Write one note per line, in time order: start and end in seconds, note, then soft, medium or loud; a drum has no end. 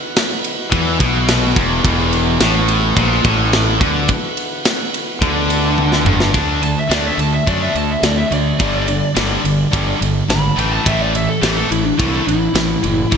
0.00 6.31 E3 medium
0.00 6.31 B3 medium
0.00 6.31 F#4 medium
0.16 snare loud
0.16 ride loud
0.44 ride medium
0.72 0.98 E2 medium
0.72 0.99 E3 loud
0.72 kick loud
0.72 ride loud
1.00 1.52 B1 medium
1.00 1.56 B2 loud
1.00 kick loud
1.00 ride medium
1.28 snare loud
1.28 ride loud
1.55 1.83 E1 medium
1.55 1.82 E2 loud
1.55 kick loud
1.55 ride medium
1.84 2.37 E1 medium
1.84 2.40 E2 loud
1.84 kick loud
1.84 ride loud
2.13 ride medium
2.39 2.92 A1 loud
2.39 2.96 A2 loud
2.39 snare loud
2.39 ride loud
2.68 ride medium
2.96 3.23 A#1 loud
2.96 3.24 A#2 loud
2.96 kick loud
2.96 ride loud
3.24 3.77 A1 medium
3.24 3.80 A2 loud
3.24 kick loud
3.24 ride medium
3.53 snare loud
3.53 ride loud
3.80 4.07 D2 medium
3.80 4.08 D3 loud
3.80 kick loud
3.80 ride medium
4.08 kick loud
4.08 ride medium
4.37 ride medium
4.65 snare loud
4.65 ride loud
4.94 ride medium
5.21 6.02 D2 medium
5.21 6.06 D3 loud
5.21 kick loud
5.21 ride loud
5.50 ride medium
5.78 high tom medium
5.92 snare medium
6.05 6.32 G1 loud
6.05 6.33 G2 loud
6.05 mid tom medium
6.20 snare loud
6.33 6.74 D2 medium
6.33 6.60 D3 medium
6.33 6.61 A3 loud
6.33 6.61 D4 medium
6.33 kick loud
6.33 ride medium
6.62 6.88 D3 medium
6.62 6.88 A3 medium
6.62 6.77 A5 medium
6.62 ride medium
6.79 6.92 E5 medium
6.89 7.10 D2 medium
6.89 7.17 D3 medium
6.89 7.17 A3 medium
6.89 7.17 D4 medium
6.89 7.07 D5 medium
6.89 snare loud
6.89 ride medium
7.07 7.20 E5 medium
7.18 7.38 D2 medium
7.18 7.44 D3 medium
7.18 7.44 A3 medium
7.18 7.34 A5 medium
7.18 ride medium
7.34 7.48 E5 medium
7.46 7.67 F#2 medium
7.46 7.73 D3 medium
7.46 7.72 A3 loud
7.46 7.74 D4 medium
7.46 7.62 D5 medium
7.46 kick loud
7.46 ride medium
7.63 7.76 E5 medium
7.74 7.95 D2 medium
7.74 8.00 D3 medium
7.74 8.00 A3 medium
7.74 7.90 A5 loud
7.74 ride medium
7.91 8.03 E5 medium
8.02 8.23 D2 medium
8.02 8.29 D3 medium
8.02 8.29 A3 medium
8.02 8.17 D5 medium
8.02 snare loud
8.02 ride medium
8.18 8.32 E5 medium
8.31 8.51 D2 medium
8.31 8.58 D3 medium
8.31 8.58 A3 medium
8.31 9.98 D5 medium
8.31 ride medium
8.59 9.00 G1 medium
8.59 8.85 G2 medium
8.59 8.86 D3 loud
8.59 8.87 G3 loud
8.59 kick loud
8.59 ride medium
8.86 9.13 G2 medium
8.86 9.13 D3 medium
8.86 ride medium
9.15 9.36 G1 medium
9.15 9.43 G2 medium
9.15 9.43 D3 medium
9.15 9.43 G3 medium
9.15 snare loud
9.15 ride medium
9.44 9.65 G1 medium
9.44 9.70 G2 medium
9.44 9.70 D3 medium
9.44 ride medium
9.71 9.93 G1 medium
9.71 9.99 G2 medium
9.71 9.99 D3 loud
9.71 10.00 G3 medium
9.71 kick loud
9.71 ride medium
10.00 10.21 G1 medium
10.00 10.26 G2 medium
10.00 10.26 D3 medium
10.00 ride medium
10.28 10.49 G#1 medium
10.28 10.55 G2 medium
10.28 10.55 D3 medium
10.28 10.58 B5 loud
10.28 snare loud
10.28 ride loud
10.56 10.77 A1 medium
10.56 10.83 A2 medium
10.56 10.84 E3 medium
10.56 10.84 A3 medium
10.56 10.72 G5 medium
10.56 ride medium
10.73 10.86 A5 medium
10.85 11.26 A1 medium
10.85 11.12 A2 loud
10.85 11.12 E3 loud
10.85 11.13 A3 loud
10.85 11.01 E5 medium
10.85 kick loud
10.85 ride loud
11.01 11.16 D5 medium
11.13 11.40 A2 medium
11.13 11.40 E3 medium
11.13 11.29 E5 medium
11.13 ride medium
11.29 11.42 A4 medium
11.42 11.63 A1 medium
11.42 11.68 A2 medium
11.42 11.69 E3 medium
11.42 11.69 A3 medium
11.42 11.57 G4 medium
11.42 snare loud
11.42 ride loud
11.57 11.71 A4 medium
11.69 11.91 A1 medium
11.69 11.96 A2 medium
11.69 11.96 E3 medium
11.69 11.84 E4 medium
11.69 ride medium
11.85 11.98 D4 medium
11.98 12.19 C2 medium
11.98 12.25 A2 medium
11.98 12.26 E3 loud
11.98 12.26 A3 medium
11.98 12.27 E4 medium
11.98 kick loud
11.98 ride loud
12.27 12.47 A1 medium
12.27 12.53 A2 medium
12.27 12.53 E3 medium
12.27 13.17 E4 loud
12.27 ride medium
12.54 12.75 A1 medium
12.54 12.81 A2 medium
12.54 12.81 E3 medium
12.54 snare loud
12.54 ride medium
12.82 13.04 F#1 medium
12.82 13.09 A2 medium
12.82 13.09 E3 medium
12.82 ride medium
13.10 13.17 E1 medium
13.10 13.17 E2 medium
13.10 13.17 B2 medium
13.10 13.17 E3 loud
13.10 kick loud
13.10 ride medium